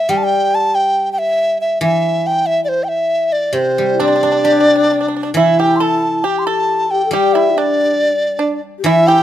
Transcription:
Already playing: dizi E5
0.09 guzheng G3, dizi G5
0.17 dizi A5
0.24 dizi G5
0.55 dizi A5
0.75 dizi G5
1.13 dizi G5
1.19 dizi E5
1.61 dizi E5
1.81 guzheng E3, dizi E5
2.27 dizi G5
2.46 dizi E5
2.65 dizi D5
2.69 dizi C5
2.84 dizi G5
2.88 dizi E5
3.32 dizi D5
3.53 guzheng C3, dizi C5
3.78 guzheng G3
3.93 xiao E4
4.00 guzheng C4, pipa D4, xiao D4, dizi D5
4.08 pipa D4
4.16 pipa D4
4.23 guzheng D4, pipa D4
4.32 pipa D4
4.39 pipa D4
4.45 pipa D4, guzheng G4
4.52 pipa D4
4.60 pipa D4
4.76 pipa D4
4.84 pipa D4
4.92 pipa D4
5.01 pipa D4
5.08 pipa D4
5.16 pipa D4
5.23 pipa D4
5.34 guzheng E3, xiao E4, pipa E4, dizi E5
5.60 pipa G4, dizi G5
5.76 dizi C6
5.80 pipa A4, dizi A5
6.24 pipa G4, xiao G4, dizi G5
6.39 dizi C6
6.47 pipa A4, dizi A5
6.90 xiao G4, dizi G5
7.06 xiao A4
7.11 guzheng G3, xiao G4, pipa G4, dizi G5
7.33 pipa E4, dizi E5
7.50 xiao E4
7.56 xiao D4, pipa D4, dizi D5
8.38 xiao D4, pipa D4
8.79 xiao G4
8.84 guzheng E3, xiao E4, pipa E4, dizi E5
9.07 pipa G4, dizi G5

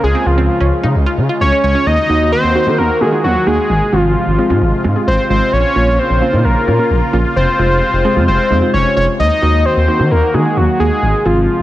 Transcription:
Already playing: analog synth pad C#3 F4
0.03 analog synth bass C#2, analog synth pad G#3, analog synth lead G#4
0.15 synth arpeggio sound C4
0.26 analog synth bass C#2, analog synth lead F4
0.38 analog synth bass C#2, synth arpeggio sound C4
0.60 analog synth bass C#2, synth arpeggio sound C#4
0.83 analog synth bass C#3, synth arpeggio sound D#4
0.95 analog synth bass C#2
1.06 synth arpeggio sound F4
1.18 analog synth bass C#3
1.29 synth arpeggio sound F4
1.41 analog synth bass C#2, analog synth lead C#5
1.52 synth arpeggio sound C#4
1.64 analog synth bass C#2, analog synth lead C#5
1.75 synth arpeggio sound C#4
1.86 analog synth bass D#2, analog synth pad D#3 A#3 F#4, analog synth lead D#5
2.09 analog synth bass D#2, synth pluck A#3 D#4 F#4
2.21 analog synth bass D#2
2.32 analog synth lead C5
2.44 analog synth bass D#2
2.55 synth pluck A#3 D#4 F#4
2.67 analog synth bass D#3, synth pluck A#3 D#4 F#4
2.78 analog synth bass D#2, analog synth lead A#4
3.01 analog synth bass D#3, synth pluck A#3 D#4 F#4, analog synth lead G#4
3.12 synth pluck A#3 D#4 F4
3.24 analog synth bass D#2, analog synth lead F#4
3.47 analog synth bass D#2, synth pluck A#3 D#4 F#4, analog synth lead G#4
3.70 analog synth bass G#1, analog synth pad C3 G#3 F4
3.93 analog synth bass G#1, synth pluck G#3 C4 F4, analog synth lead F4
4.04 analog synth bass G#1
4.27 analog synth bass G#1
4.39 synth pluck G#3 C4 F4
4.50 analog synth bass G#2, synth pluck G#3 C4 F4
4.61 analog synth bass G#1
4.84 analog synth bass G#2, synth pluck G#3 C4 F4
4.96 synth pluck G#3 C4 G#4
5.07 analog synth bass G#1, analog synth lead C5
5.30 analog synth bass G#1, synth pluck G#3 C4 F4, analog synth lead C5
5.53 analog synth bass A#1, analog synth pad C#3 A#3 F4, analog synth lead C#5
5.76 analog synth bass A#1, synth pluck A#3 C#4 F4
5.87 analog synth bass A#1
5.99 analog synth lead C5
6.10 analog synth bass A#1
6.22 synth pluck A#3 C#4 F4
6.33 analog synth bass A#2, synth pluck A#3 C#4 D#4
6.45 analog synth bass A#1, analog synth lead A#4
6.67 analog synth bass A#2, synth pluck A#3 C#4 F4
6.79 synth pluck A#3 C#4 F4
6.90 analog synth bass A#1
7.13 analog synth bass A#1, synth pluck A#3 C#4 F4
7.36 analog synth bass F1, analog synth pad C3 G#3, analog synth lead C5
7.59 analog synth bass F1, synth pluck G#3 C4 F4
7.71 analog synth bass F1
7.93 analog synth bass F1
8.05 synth pluck G#3 C4 G#4
8.16 analog synth bass F2, synth pluck G#3 C4 F4
8.28 analog synth bass F1, analog synth lead C5
8.51 analog synth bass F2, synth pluck G#3 C4 D#4
8.62 synth pluck G#3 C4 F4
8.73 analog synth bass F1, analog synth lead C#5
8.96 analog synth bass F1, synth pluck G#3 C4 F4, analog synth lead C#5
9.19 analog synth bass D#2, analog synth pad D#3 A#3 F#4, analog synth lead D#5
9.42 analog synth bass D#2, synth pluck A#3 D#4 F#4
9.54 analog synth bass D#2
9.65 analog synth lead C5
9.77 analog synth bass D#2
9.88 synth pluck A#3 D#4 F#4
10.00 analog synth bass D#3, synth pluck A#3 D#4 F#4
10.11 analog synth bass D#2, analog synth lead A#4
10.34 analog synth bass D#3, synth pluck A#3 D#4 F#4, analog synth lead G#4
10.45 synth pluck A#3 D#4 F#4
10.57 analog synth bass D#2, analog synth lead F#4
10.80 analog synth bass D#2, synth pluck A#3 D#4 F#4, analog synth lead G#4
11.02 analog synth bass G#1, analog synth pad C3 G#3 F4
11.25 analog synth bass G#1, synth pluck C4 F4 G#4, analog synth lead F4
11.37 analog synth bass G#1

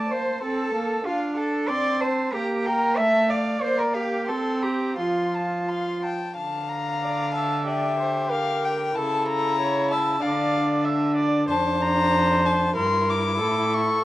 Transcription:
Already playing: viola A3, cello D5, violin A5
0.08 viola A#3, violin C5, cello C5
0.41 viola C4, violin A4 A5, cello A4
0.74 viola A#3
1.03 viola D4, violin F4 F5, cello F4
1.35 violin A4 A5, cello A4
1.68 viola C4, violin D5 C6, cello D5
2.00 violin C5 A5, cello C5
2.33 viola A#3, violin G4 A#5, cello G4
2.66 cello A#4, violin A#4 G5
2.97 viola A3, violin E5 A5, cello E5
3.29 violin D5 F5, cello D5
3.62 viola A#3, cello C5, violin C5 D5
3.78 violin A#4, cello A#4
3.94 cello G4, violin G4 F5
4.27 viola C4, cello A4, violin A4 C6
4.62 cello G4, violin G4 A#5
4.98 viola F3, cello F4, violin F4 C6
5.34 violin A5
5.68 violin F5 C6
6.02 violin G5 A5
6.36 cello D3, violin F5 A5
6.69 violin A#5
7.03 viola D5
7.34 viola E5, violin A5
7.67 violin G4 E5, viola D5
7.99 viola C5
8.31 viola A#4, violin F5
8.64 violin G5
8.96 cello C#3, violin E4 A5, viola A4
9.27 violin A#5
9.60 viola C#5
9.91 viola E5, violin A5
10.21 cello D3, violin D4 F5, viola D5
10.84 viola E5
11.16 viola D5
11.49 cello F2, violin D4 A5, viola C5
11.82 violin A#5
12.45 violin A5
12.75 cello G2, violin E4 C6, viola A#4
13.09 violin D6
13.38 cello A2, viola A4
13.74 violin C#6

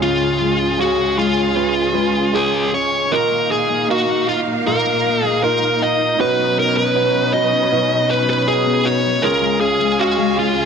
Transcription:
Already playing: grand piano C#2 G#2 G#3 C#4 F4 G#4, string section C#2 C#3 G#3 G#4 F5, steel-string acoustic guitar F4
0.02 steel-string acoustic guitar C#3, lead electric guitar F4
0.40 steel-string acoustic guitar G#3
0.78 grand piano G#3 C#4 G#4 F5, steel-string acoustic guitar C#4, lead electric guitar F#4
1.17 steel-string acoustic guitar G#3, lead electric guitar F4
1.54 grand piano G#3 C#4 F4 B4, steel-string acoustic guitar C#4
1.94 grand piano G#3 C#4 F4 B4, steel-string acoustic guitar G#3
2.33 grand piano G#3 C#4 F4 G#4, steel-string acoustic guitar F4, lead electric guitar G#4
2.73 steel-string acoustic guitar C#4, lead electric guitar C#5
3.12 steel-string acoustic guitar A#2 F4, grand piano A#2 D#3 A#3 D#4 F4 A#4, string section A#2 A#3 D#4 F5, lead electric guitar A#4
3.31 steel-string acoustic guitar A#3
3.50 steel-string acoustic guitar D#4, lead electric guitar G#4
3.70 steel-string acoustic guitar A#3
3.88 grand piano A#3 D#4 A#4 F5, lead electric guitar F#4
4.08 steel-string acoustic guitar A#3
4.28 steel-string acoustic guitar F4, lead electric guitar F4
4.48 steel-string acoustic guitar D#4
4.66 steel-string acoustic guitar A#2 F4, grand piano A#3 D#4 F4 A#4, lead electric guitar A#4
4.86 steel-string acoustic guitar A#3
5.05 steel-string acoustic guitar D#4
5.24 steel-string acoustic guitar A#3, lead electric guitar G#4
5.43 grand piano A#3 D#4 F4 A#4, steel-string acoustic guitar F4, lead electric guitar A#4
5.62 steel-string acoustic guitar A#3
5.81 steel-string acoustic guitar F4, lead electric guitar D#5
6.00 steel-string acoustic guitar D#4
6.18 steel-string acoustic guitar B2 F#4, string section B2 F#3 C#4 B4, grand piano B2 F#3 C#4 D#4 F#4 B4, lead electric guitar B4
6.39 steel-string acoustic guitar B3
6.57 steel-string acoustic guitar C#4, lead electric guitar A#4
6.77 steel-string acoustic guitar B3, lead electric guitar B4
6.95 grand piano C#4 D#4 F#4 B4, steel-string acoustic guitar F#4
7.14 steel-string acoustic guitar B3
7.33 steel-string acoustic guitar F#4, lead electric guitar D#5
7.53 steel-string acoustic guitar C#4
7.71 steel-string acoustic guitar B2 F#4, grand piano C#4 D#4 F#4 B4
7.91 steel-string acoustic guitar B3
8.10 steel-string acoustic guitar C#4, lead electric guitar B4
8.29 steel-string acoustic guitar B3, lead electric guitar B4
8.47 grand piano C#4 D#4 F#4 B4, steel-string acoustic guitar F#4, lead electric guitar G#4
8.66 steel-string acoustic guitar B3
8.85 steel-string acoustic guitar F#4, lead electric guitar C#5
9.04 steel-string acoustic guitar C#4
9.22 string section C#2 C#3 G#3 G#4 F5, steel-string acoustic guitar C#3 F4, grand piano C#3 G#3 C#4 F4 G#4, lead electric guitar A#4
9.42 steel-string acoustic guitar G#3
9.61 steel-string acoustic guitar C#4, lead electric guitar G#4
9.80 steel-string acoustic guitar G#3
9.99 grand piano G#3 C#4 G#4 F5, lead electric guitar F#4
10.18 steel-string acoustic guitar G#3
10.37 steel-string acoustic guitar F4, lead electric guitar F4
10.56 steel-string acoustic guitar C#4

